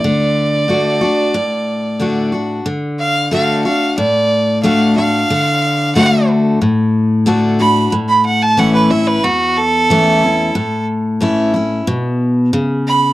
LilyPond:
<<
  \new Staff \with { instrumentName = "Fiddle" } { \time 4/4 \key d \major \tempo 4 = 91 d''2.~ d''8 r8 | r8 f''8 f''8 f''8 d''4 f''8 f''8~ | f''4 fis''8 r2 b''8 | r16 b''16 fis''16 a''16 fis''16 b'16 e''16 b'16 fis'8 a'4.~ |
a'8 r2. b''8 | }
  \new Staff \with { instrumentName = "Steel-string acoustic guitar" } { \time 4/4 \key d \major << { r4 <d a d' fis'>8 <d' fis'>8 r4 <d a d' fis'>8 <d' fis'>8 | r4 <d a d' fis'>8 <d' fis'>8 r4 <d a d' fis'>8 <d' fis'>8 | r4 <d a d' fis'>4 r4 <d a d' fis'>8 <d' fis'>8 | r4 <e a cis' e'>8 <cis' e'>8 r4 <e a cis' e'>8 <cis' e'>8 |
r4 <e a cis' e'>8 <cis' e'>8 r2 | } \\ { d2 a,2 | d2 a,2 | d2 a,2 | a,2 e,2 |
a,2 b,4 cis4 | } >> }
>>